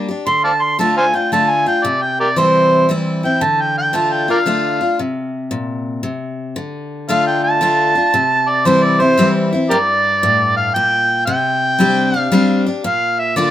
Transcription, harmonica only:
0.27 0.43 C6 loud
0.44 0.51 D5 medium
0.44 0.52 F5 medium
0.44 0.64 A5 medium
0.62 0.79 C6 medium
0.80 0.97 A5 medium
0.97 1.05 C5 medium
0.97 1.05 F5 medium
0.97 1.17 G#5 medium
1.15 1.32 G5 medium
1.32 1.51 A5 medium
1.50 1.67 G#5 medium
1.67 1.86 G5 medium
1.85 2.04 D5 medium
2.02 2.19 G5 medium
2.20 2.28 G4 medium
2.20 2.29 A#4 medium
2.20 2.39 D5 medium
2.38 2.88 C5 loud
3.25 3.44 G5 medium
3.43 3.62 A5 medium
3.61 3.77 G5 medium
3.78 3.97 G5 loud
3.96 4.14 A5 medium
4.12 4.29 G5 medium
4.31 4.39 A#4 medium
4.31 4.38 D5 medium
4.31 4.98 F5 loud
7.09 7.26 F5 medium
7.27 7.43 G5 medium
7.44 8.50 A5 loud
8.48 8.67 D5 medium
8.66 8.85 C5 medium
8.83 9.02 D5 medium
9.01 9.29 C5 loud
9.70 9.77 G4 medium
9.70 9.78 A#4 medium
9.70 10.53 D5 loud
10.56 10.73 F5 medium
10.74 11.23 G5 loud
11.26 12.18 G5 loud
12.18 12.62 F5 loud
12.85 13.21 F5 loud
13.19 13.36 E5 medium
13.36 13.51 D5 medium

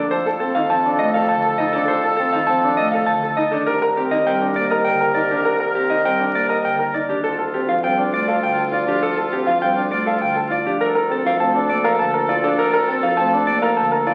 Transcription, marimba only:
0.00 0.16 F3 medium
0.56 0.75 D#3 medium
0.70 0.90 F3 medium
1.00 1.19 A3 medium
1.30 1.49 D3 medium
1.74 1.94 D#3 medium
2.34 2.53 D#3 medium
2.49 2.68 F3 medium
2.79 2.98 A3 medium
3.08 3.27 D3 medium
3.53 3.72 D#3 medium
4.12 4.31 D#3 medium
4.27 4.46 G3 medium
4.56 4.76 A#3 medium
4.86 5.06 D3 medium
5.31 5.50 D#3 medium
5.90 6.09 D#3 medium
6.05 6.24 G3 medium
6.35 6.54 A#3 medium
6.65 6.84 D3 medium
7.10 7.29 D#3 medium
7.68 7.88 F3 medium
7.84 8.03 G3 medium
8.13 8.32 A3 medium
8.42 8.62 D3 medium
8.87 9.06 F3 medium
9.46 9.66 F3 medium
9.61 9.81 G3 medium
9.91 10.10 A3 medium
10.21 10.40 D3 medium
10.65 10.85 F3 medium
11.25 11.44 F3 medium
11.40 11.59 A3 medium
11.70 11.89 A#3 medium
11.85 12.04 F3 medium
12.00 12.19 D3 medium
12.44 12.63 F3 medium
13.03 13.22 F3 medium
13.19 13.37 A3 medium
13.48 13.67 A#3 medium
13.78 13.97 D3 medium

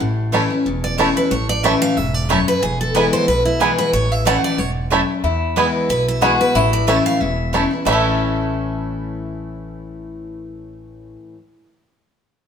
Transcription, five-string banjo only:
0.34 0.41 A3 medium
0.34 0.42 C#4 medium
0.34 0.42 E4 medium
0.99 1.07 A3 medium
0.99 1.07 C#4 medium
0.99 1.07 E4 medium
1.65 1.72 A3 medium
1.65 1.73 C#4 medium
1.65 1.73 E4 medium
2.30 2.38 A3 medium
2.30 2.38 C#4 medium
2.30 2.38 E4 medium
2.96 3.03 B3 medium
2.96 3.04 E4 medium
3.61 3.69 B3 medium
3.61 3.69 E4 medium
4.27 4.34 A3 medium
4.27 4.34 C#4 medium
4.27 4.35 E4 medium
4.92 5.00 A3 medium
4.92 5.00 C#4 medium
4.92 5.00 E4 medium
5.57 5.65 B3 medium
5.57 5.65 E4 medium
6.22 6.30 B3 medium
6.22 6.31 E4 medium
6.89 6.96 A3 medium
6.89 6.96 C#4 medium
6.89 6.97 E4 medium
7.54 7.62 A3 medium
7.54 7.62 C#4 medium
7.54 7.62 E4 medium
7.87 11.16 A3 medium
7.87 11.18 C#4 medium
7.91 11.20 E4 medium
7.91 11.22 A4 medium

